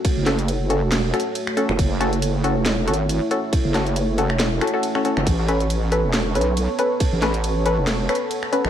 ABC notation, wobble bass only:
X:1
M:4/4
L:1/16
Q:"Swing 16ths" 1/4=138
K:F#m
V:1 name="Wobble bass" clef=bass
z F,,,6 E,,,3 z4 z F,,, | F,,,6- F,,, E,,,3 G,,,3 z3 | z F,,,6 E,,,3 z4 z F,,, | A,,,6- A,,, E,,,3 B,,,3 z3 |
z A,,,6 E,,,3 z4 z A,,, |]